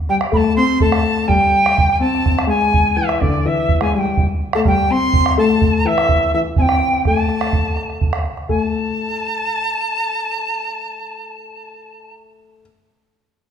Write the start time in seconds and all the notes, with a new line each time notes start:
0.09 G3 G5
0.21 bombo rim
0.32 A3 B5, bombo rim, bombo low
0.37 A5
0.44 bombo rim
0.56 C4 C6
0.80 A3 A5, bombo low
0.92 bombo rim
1.17 bombo rim
1.28 G3 G5, bombo low
1.41 bombo rim
1.66 bombo rim
1.78 bombo low
1.90 bombo rim
2.00 C4 A5
2.15 bombo rim
2.26 bombo rim, bombo low
2.39 bombo rim
2.47 G#3 G#5
2.62 bombo rim
2.74 bombo low
2.97 E3 E5
3.09 bombo rim
3.20 D3 D5, bombo rim, bombo low
3.34 bombo rim
3.45 E3 E5
3.69 bombo low
3.81 G#3 G#5, bombo rim
3.94 G3 G#5
3.98 G5
4.06 bombo rim
4.17 bombo low
4.53 A3 A5, bombo rim
4.65 G3 G5, bombo rim, bombo low
4.78 bombo rim
4.90 C4 C6
5.14 bombo low
5.26 bombo rim
5.38 A3 A5
5.50 bombo rim
5.62 bombo low
5.85 E3 E5
5.98 bombo rim
6.09 bombo rim, bombo low
6.21 bombo rim
6.34 E3 E5
6.56 C4 G#5, bombo low
6.61 G5
6.69 bombo rim
6.93 bombo rim
7.05 A3 A5, bombo rim, bombo low
7.17 bombo rim
7.29 bombo rim
7.41 bombo rim
7.53 bombo low
7.66 bombo rim
7.77 bombo rim
7.90 bombo rim
8.01 bombo low
8.13 bombo rim
8.37 bombo rim
8.49 A3 G#5, bombo low
8.62 A5